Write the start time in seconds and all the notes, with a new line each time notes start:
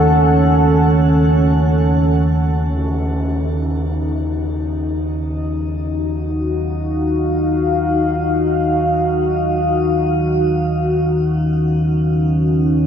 Already playing: D#2 D#3 C#4 A4 F#5
2.74 D#2 D#3 D#4, tam-tam
4.92 F#4
5.96 F5
11.05 C#4